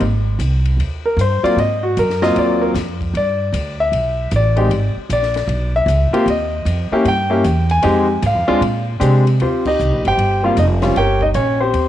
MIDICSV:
0, 0, Header, 1, 5, 480
1, 0, Start_track
1, 0, Key_signature, -3, "major"
1, 0, Tempo, 390625
1, 22, Time_signature, 4, 2, 24, 8
1, 14603, End_track
2, 0, Start_track
2, 0, Title_t, "Grand piano"
2, 0, Program_c, 0, 0
2, 1296, Note_on_c, 0, 70, 73
2, 1459, Note_off_c, 0, 70, 0
2, 1487, Note_on_c, 0, 72, 81
2, 1761, Note_on_c, 0, 54, 66
2, 1766, Note_on_c, 0, 58, 66
2, 1769, Note_on_c, 0, 74, 94
2, 1770, Note_on_c, 0, 65, 74
2, 1771, Note_on_c, 0, 60, 62
2, 1776, Note_off_c, 0, 72, 0
2, 1920, Note_off_c, 0, 54, 0
2, 1922, Note_off_c, 0, 58, 0
2, 1924, Note_off_c, 0, 65, 0
2, 1925, Note_off_c, 0, 60, 0
2, 1935, Note_off_c, 0, 74, 0
2, 1958, Note_on_c, 0, 75, 89
2, 2250, Note_on_c, 0, 66, 71
2, 2252, Note_off_c, 0, 75, 0
2, 2416, Note_off_c, 0, 66, 0
2, 2445, Note_on_c, 0, 70, 83
2, 2726, Note_on_c, 0, 54, 74
2, 2731, Note_on_c, 0, 75, 104
2, 2733, Note_on_c, 0, 58, 72
2, 2734, Note_on_c, 0, 60, 68
2, 2735, Note_off_c, 0, 70, 0
2, 2737, Note_on_c, 0, 65, 89
2, 2896, Note_off_c, 0, 75, 0
2, 2933, Note_on_c, 0, 74, 81
2, 3213, Note_on_c, 0, 70, 82
2, 3220, Note_off_c, 0, 74, 0
2, 3315, Note_off_c, 0, 70, 0
2, 3345, Note_off_c, 0, 54, 0
2, 3349, Note_off_c, 0, 58, 0
2, 3349, Note_off_c, 0, 60, 0
2, 3351, Note_off_c, 0, 65, 0
2, 3897, Note_on_c, 0, 74, 81
2, 4621, Note_off_c, 0, 74, 0
2, 4673, Note_on_c, 0, 76, 95
2, 5268, Note_off_c, 0, 76, 0
2, 5357, Note_on_c, 0, 74, 79
2, 5607, Note_on_c, 0, 56, 60
2, 5613, Note_on_c, 0, 60, 59
2, 5617, Note_on_c, 0, 63, 60
2, 5622, Note_on_c, 0, 67, 72
2, 5763, Note_off_c, 0, 56, 0
2, 5766, Note_off_c, 0, 60, 0
2, 5768, Note_off_c, 0, 63, 0
2, 5771, Note_off_c, 0, 67, 0
2, 6072, Note_off_c, 0, 74, 0
2, 6300, Note_on_c, 0, 74, 85
2, 7023, Note_off_c, 0, 74, 0
2, 7077, Note_on_c, 0, 76, 95
2, 7531, Note_on_c, 0, 60, 71
2, 7532, Note_on_c, 0, 58, 77
2, 7534, Note_on_c, 0, 65, 71
2, 7538, Note_on_c, 0, 67, 88
2, 7670, Note_off_c, 0, 76, 0
2, 7685, Note_off_c, 0, 60, 0
2, 7686, Note_off_c, 0, 58, 0
2, 7687, Note_off_c, 0, 65, 0
2, 7689, Note_off_c, 0, 67, 0
2, 7737, Note_on_c, 0, 75, 81
2, 8462, Note_off_c, 0, 75, 0
2, 8505, Note_on_c, 0, 58, 81
2, 8508, Note_on_c, 0, 64, 73
2, 8510, Note_on_c, 0, 61, 74
2, 8513, Note_on_c, 0, 67, 87
2, 8652, Note_off_c, 0, 58, 0
2, 8653, Note_off_c, 0, 64, 0
2, 8654, Note_off_c, 0, 61, 0
2, 8656, Note_off_c, 0, 67, 0
2, 8701, Note_on_c, 0, 79, 90
2, 8966, Note_on_c, 0, 58, 71
2, 8969, Note_on_c, 0, 61, 63
2, 8973, Note_on_c, 0, 64, 65
2, 8977, Note_on_c, 0, 67, 77
2, 9123, Note_off_c, 0, 58, 0
2, 9124, Note_off_c, 0, 61, 0
2, 9126, Note_off_c, 0, 64, 0
2, 9128, Note_off_c, 0, 67, 0
2, 9423, Note_off_c, 0, 79, 0
2, 9475, Note_on_c, 0, 80, 99
2, 9614, Note_on_c, 0, 56, 79
2, 9619, Note_on_c, 0, 60, 80
2, 9623, Note_on_c, 0, 63, 76
2, 9626, Note_on_c, 0, 67, 92
2, 9898, Note_off_c, 0, 56, 0
2, 9900, Note_off_c, 0, 60, 0
2, 9903, Note_off_c, 0, 63, 0
2, 9904, Note_off_c, 0, 67, 0
2, 10069, Note_off_c, 0, 80, 0
2, 10154, Note_on_c, 0, 77, 82
2, 10413, Note_on_c, 0, 60, 75
2, 10417, Note_on_c, 0, 56, 91
2, 10419, Note_on_c, 0, 62, 83
2, 10419, Note_on_c, 0, 65, 98
2, 10566, Note_off_c, 0, 60, 0
2, 10568, Note_off_c, 0, 56, 0
2, 10569, Note_off_c, 0, 62, 0
2, 10569, Note_off_c, 0, 65, 0
2, 10870, Note_off_c, 0, 77, 0
2, 11055, Note_on_c, 0, 56, 75
2, 11057, Note_on_c, 0, 62, 71
2, 11058, Note_on_c, 0, 67, 82
2, 11063, Note_on_c, 0, 60, 67
2, 11338, Note_off_c, 0, 56, 0
2, 11340, Note_off_c, 0, 62, 0
2, 11340, Note_off_c, 0, 67, 0
2, 11342, Note_off_c, 0, 60, 0
2, 11565, Note_on_c, 0, 60, 59
2, 11570, Note_on_c, 0, 67, 62
2, 11573, Note_on_c, 0, 65, 56
2, 11577, Note_on_c, 0, 72, 78
2, 11643, Note_off_c, 0, 72, 0
2, 11844, Note_off_c, 0, 60, 0
2, 11846, Note_off_c, 0, 67, 0
2, 11848, Note_off_c, 0, 65, 0
2, 11874, Note_on_c, 0, 63, 61
2, 11879, Note_on_c, 0, 67, 60
2, 11889, Note_on_c, 0, 75, 81
2, 12311, Note_off_c, 0, 63, 0
2, 12314, Note_off_c, 0, 67, 0
2, 12319, Note_off_c, 0, 75, 0
2, 12372, Note_on_c, 0, 67, 61
2, 12374, Note_on_c, 0, 72, 57
2, 12382, Note_on_c, 0, 79, 102
2, 12801, Note_off_c, 0, 67, 0
2, 12802, Note_off_c, 0, 72, 0
2, 12819, Note_on_c, 0, 55, 71
2, 12821, Note_on_c, 0, 58, 65
2, 12823, Note_on_c, 0, 60, 62
2, 12831, Note_on_c, 0, 65, 75
2, 12845, Note_on_c, 0, 77, 74
2, 12852, Note_off_c, 0, 79, 0
2, 12906, Note_off_c, 0, 77, 0
2, 12969, Note_off_c, 0, 55, 0
2, 12971, Note_off_c, 0, 58, 0
2, 12971, Note_off_c, 0, 60, 0
2, 12975, Note_off_c, 0, 65, 0
2, 13011, Note_on_c, 0, 75, 80
2, 13012, Note_on_c, 0, 63, 66
2, 13077, Note_off_c, 0, 75, 0
2, 13079, Note_off_c, 0, 63, 0
2, 13296, Note_on_c, 0, 60, 54
2, 13298, Note_on_c, 0, 55, 66
2, 13299, Note_on_c, 0, 61, 60
2, 13303, Note_on_c, 0, 77, 72
2, 13305, Note_on_c, 0, 65, 68
2, 13448, Note_off_c, 0, 60, 0
2, 13449, Note_off_c, 0, 55, 0
2, 13450, Note_off_c, 0, 61, 0
2, 13453, Note_off_c, 0, 65, 0
2, 13457, Note_off_c, 0, 77, 0
2, 13484, Note_on_c, 0, 79, 95
2, 13491, Note_on_c, 0, 73, 67
2, 13495, Note_on_c, 0, 67, 73
2, 13495, Note_on_c, 0, 70, 62
2, 13764, Note_off_c, 0, 79, 0
2, 13767, Note_off_c, 0, 73, 0
2, 13770, Note_off_c, 0, 67, 0
2, 13770, Note_off_c, 0, 70, 0
2, 13788, Note_on_c, 0, 75, 87
2, 13795, Note_on_c, 0, 63, 67
2, 13849, Note_off_c, 0, 75, 0
2, 13857, Note_off_c, 0, 63, 0
2, 13946, Note_on_c, 0, 73, 83
2, 13961, Note_on_c, 0, 61, 66
2, 14234, Note_off_c, 0, 73, 0
2, 14242, Note_off_c, 0, 61, 0
2, 14256, Note_on_c, 0, 60, 53
2, 14260, Note_on_c, 0, 72, 79
2, 14263, Note_on_c, 0, 67, 62
2, 14603, Note_off_c, 0, 60, 0
2, 14603, Note_off_c, 0, 67, 0
2, 14603, Note_off_c, 0, 72, 0
2, 14603, End_track
3, 0, Start_track
3, 0, Title_t, "Upright bass"
3, 0, Program_c, 1, 32
3, 14, Note_on_c, 1, 32, 76
3, 469, Note_off_c, 1, 32, 0
3, 476, Note_on_c, 1, 36, 86
3, 939, Note_off_c, 1, 36, 0
3, 946, Note_on_c, 1, 39, 70
3, 1426, Note_off_c, 1, 39, 0
3, 1433, Note_on_c, 1, 43, 90
3, 1735, Note_off_c, 1, 43, 0
3, 1919, Note_on_c, 1, 44, 75
3, 2396, Note_off_c, 1, 44, 0
3, 2421, Note_on_c, 1, 42, 93
3, 2888, Note_off_c, 1, 42, 0
3, 2897, Note_on_c, 1, 39, 68
3, 3365, Note_off_c, 1, 39, 0
3, 3371, Note_on_c, 1, 41, 94
3, 3843, Note_off_c, 1, 41, 0
3, 3855, Note_on_c, 1, 43, 79
3, 4324, Note_off_c, 1, 43, 0
3, 4331, Note_on_c, 1, 38, 88
3, 4803, Note_off_c, 1, 38, 0
3, 4814, Note_on_c, 1, 35, 73
3, 5284, Note_off_c, 1, 35, 0
3, 5305, Note_on_c, 1, 33, 102
3, 5761, Note_off_c, 1, 33, 0
3, 5769, Note_on_c, 1, 32, 80
3, 6064, Note_off_c, 1, 32, 0
3, 6260, Note_on_c, 1, 34, 86
3, 6720, Note_off_c, 1, 34, 0
3, 6727, Note_on_c, 1, 35, 87
3, 7193, Note_off_c, 1, 35, 0
3, 7200, Note_on_c, 1, 37, 98
3, 7500, Note_off_c, 1, 37, 0
3, 7689, Note_on_c, 1, 39, 91
3, 8162, Note_off_c, 1, 39, 0
3, 8175, Note_on_c, 1, 41, 90
3, 8467, Note_off_c, 1, 41, 0
3, 8658, Note_on_c, 1, 43, 82
3, 9126, Note_off_c, 1, 43, 0
3, 9151, Note_on_c, 1, 40, 92
3, 9613, Note_off_c, 1, 40, 0
3, 9633, Note_on_c, 1, 41, 90
3, 10094, Note_off_c, 1, 41, 0
3, 10107, Note_on_c, 1, 44, 99
3, 10256, Note_off_c, 1, 44, 0
3, 10256, Note_on_c, 1, 41, 57
3, 10420, Note_off_c, 1, 41, 0
3, 10427, Note_on_c, 1, 39, 74
3, 10569, Note_off_c, 1, 39, 0
3, 10577, Note_on_c, 1, 46, 83
3, 11045, Note_off_c, 1, 46, 0
3, 11070, Note_on_c, 1, 48, 97
3, 11532, Note_off_c, 1, 48, 0
3, 11559, Note_on_c, 1, 39, 73
3, 12017, Note_off_c, 1, 39, 0
3, 12036, Note_on_c, 1, 36, 88
3, 12187, Note_off_c, 1, 36, 0
3, 12187, Note_on_c, 1, 34, 55
3, 12342, Note_off_c, 1, 34, 0
3, 12349, Note_on_c, 1, 31, 67
3, 12496, Note_off_c, 1, 31, 0
3, 12504, Note_on_c, 1, 31, 78
3, 12970, Note_off_c, 1, 31, 0
3, 12991, Note_on_c, 1, 29, 95
3, 13454, Note_off_c, 1, 29, 0
3, 13474, Note_on_c, 1, 31, 74
3, 13936, Note_off_c, 1, 31, 0
3, 13943, Note_on_c, 1, 34, 92
3, 14410, Note_off_c, 1, 34, 0
3, 14418, Note_on_c, 1, 39, 75
3, 14603, Note_off_c, 1, 39, 0
3, 14603, End_track
4, 0, Start_track
4, 0, Title_t, "Muted upright bass strokes"
4, 1759, Note_on_c, 9, 29, 41
4, 1882, Note_off_c, 9, 29, 0
4, 6092, Note_on_c, 9, 29, 37
4, 6215, Note_off_c, 9, 29, 0
4, 7512, Note_on_c, 9, 29, 46
4, 7634, Note_off_c, 9, 29, 0
4, 8495, Note_on_c, 9, 29, 45
4, 8618, Note_off_c, 9, 29, 0
4, 14603, End_track
5, 0, Start_track
5, 0, Title_t, "Drums"
5, 5, Note_on_c, 9, 51, 63
5, 128, Note_off_c, 9, 51, 0
5, 487, Note_on_c, 9, 44, 63
5, 487, Note_on_c, 9, 51, 77
5, 610, Note_off_c, 9, 44, 0
5, 610, Note_off_c, 9, 51, 0
5, 804, Note_on_c, 9, 51, 51
5, 927, Note_off_c, 9, 51, 0
5, 980, Note_on_c, 9, 51, 64
5, 1103, Note_off_c, 9, 51, 0
5, 1462, Note_on_c, 9, 44, 64
5, 1462, Note_on_c, 9, 51, 74
5, 1585, Note_off_c, 9, 44, 0
5, 1585, Note_off_c, 9, 51, 0
5, 1786, Note_on_c, 9, 51, 52
5, 1909, Note_off_c, 9, 51, 0
5, 1946, Note_on_c, 9, 51, 58
5, 2068, Note_off_c, 9, 51, 0
5, 2419, Note_on_c, 9, 44, 65
5, 2419, Note_on_c, 9, 51, 76
5, 2542, Note_off_c, 9, 44, 0
5, 2542, Note_off_c, 9, 51, 0
5, 2579, Note_on_c, 9, 38, 34
5, 2702, Note_off_c, 9, 38, 0
5, 2740, Note_on_c, 9, 38, 51
5, 2863, Note_off_c, 9, 38, 0
5, 2899, Note_on_c, 9, 51, 62
5, 3022, Note_off_c, 9, 51, 0
5, 3384, Note_on_c, 9, 44, 57
5, 3384, Note_on_c, 9, 51, 68
5, 3385, Note_on_c, 9, 38, 40
5, 3507, Note_off_c, 9, 44, 0
5, 3507, Note_off_c, 9, 51, 0
5, 3508, Note_off_c, 9, 38, 0
5, 3697, Note_on_c, 9, 36, 60
5, 3703, Note_on_c, 9, 51, 51
5, 3820, Note_off_c, 9, 36, 0
5, 3826, Note_off_c, 9, 51, 0
5, 3869, Note_on_c, 9, 51, 62
5, 3992, Note_off_c, 9, 51, 0
5, 4346, Note_on_c, 9, 44, 56
5, 4346, Note_on_c, 9, 51, 78
5, 4469, Note_off_c, 9, 44, 0
5, 4469, Note_off_c, 9, 51, 0
5, 4829, Note_on_c, 9, 51, 63
5, 4952, Note_off_c, 9, 51, 0
5, 5300, Note_on_c, 9, 44, 65
5, 5300, Note_on_c, 9, 51, 67
5, 5423, Note_off_c, 9, 44, 0
5, 5423, Note_off_c, 9, 51, 0
5, 5611, Note_on_c, 9, 51, 51
5, 5734, Note_off_c, 9, 51, 0
5, 5786, Note_on_c, 9, 51, 64
5, 5909, Note_off_c, 9, 51, 0
5, 6266, Note_on_c, 9, 44, 59
5, 6266, Note_on_c, 9, 51, 79
5, 6389, Note_off_c, 9, 44, 0
5, 6389, Note_off_c, 9, 51, 0
5, 6423, Note_on_c, 9, 38, 30
5, 6546, Note_off_c, 9, 38, 0
5, 6562, Note_on_c, 9, 51, 51
5, 6588, Note_on_c, 9, 38, 53
5, 6685, Note_off_c, 9, 51, 0
5, 6711, Note_off_c, 9, 38, 0
5, 6743, Note_on_c, 9, 51, 61
5, 6866, Note_off_c, 9, 51, 0
5, 7228, Note_on_c, 9, 44, 62
5, 7228, Note_on_c, 9, 51, 72
5, 7351, Note_off_c, 9, 44, 0
5, 7351, Note_off_c, 9, 51, 0
5, 7543, Note_on_c, 9, 51, 56
5, 7666, Note_off_c, 9, 51, 0
5, 7713, Note_on_c, 9, 51, 71
5, 7835, Note_off_c, 9, 51, 0
5, 8186, Note_on_c, 9, 44, 62
5, 8186, Note_on_c, 9, 51, 77
5, 8309, Note_off_c, 9, 44, 0
5, 8309, Note_off_c, 9, 51, 0
5, 8666, Note_on_c, 9, 51, 69
5, 8789, Note_off_c, 9, 51, 0
5, 9146, Note_on_c, 9, 44, 69
5, 9146, Note_on_c, 9, 51, 72
5, 9269, Note_off_c, 9, 44, 0
5, 9269, Note_off_c, 9, 51, 0
5, 9455, Note_on_c, 9, 51, 50
5, 9578, Note_off_c, 9, 51, 0
5, 9615, Note_on_c, 9, 51, 69
5, 9738, Note_off_c, 9, 51, 0
5, 10107, Note_on_c, 9, 44, 54
5, 10107, Note_on_c, 9, 51, 82
5, 10230, Note_off_c, 9, 44, 0
5, 10230, Note_off_c, 9, 51, 0
5, 10594, Note_on_c, 9, 51, 73
5, 10717, Note_off_c, 9, 51, 0
5, 11072, Note_on_c, 9, 44, 68
5, 11072, Note_on_c, 9, 51, 71
5, 11195, Note_off_c, 9, 44, 0
5, 11195, Note_off_c, 9, 51, 0
5, 11390, Note_on_c, 9, 51, 53
5, 11513, Note_off_c, 9, 51, 0
5, 11548, Note_on_c, 9, 51, 61
5, 11671, Note_off_c, 9, 51, 0
5, 11864, Note_on_c, 9, 36, 79
5, 11865, Note_on_c, 9, 49, 78
5, 11987, Note_off_c, 9, 36, 0
5, 11988, Note_off_c, 9, 49, 0
5, 12036, Note_on_c, 9, 44, 60
5, 12159, Note_off_c, 9, 44, 0
5, 12348, Note_on_c, 9, 51, 51
5, 12471, Note_off_c, 9, 51, 0
5, 12516, Note_on_c, 9, 51, 66
5, 12639, Note_off_c, 9, 51, 0
5, 12985, Note_on_c, 9, 44, 54
5, 12985, Note_on_c, 9, 51, 70
5, 13108, Note_off_c, 9, 44, 0
5, 13108, Note_off_c, 9, 51, 0
5, 13295, Note_on_c, 9, 51, 49
5, 13296, Note_on_c, 9, 38, 44
5, 13418, Note_off_c, 9, 51, 0
5, 13419, Note_off_c, 9, 38, 0
5, 13467, Note_on_c, 9, 51, 56
5, 13590, Note_off_c, 9, 51, 0
5, 13774, Note_on_c, 9, 36, 55
5, 13897, Note_off_c, 9, 36, 0
5, 13937, Note_on_c, 9, 44, 50
5, 13937, Note_on_c, 9, 51, 65
5, 14060, Note_off_c, 9, 44, 0
5, 14060, Note_off_c, 9, 51, 0
5, 14422, Note_on_c, 9, 51, 65
5, 14545, Note_off_c, 9, 51, 0
5, 14603, End_track
0, 0, End_of_file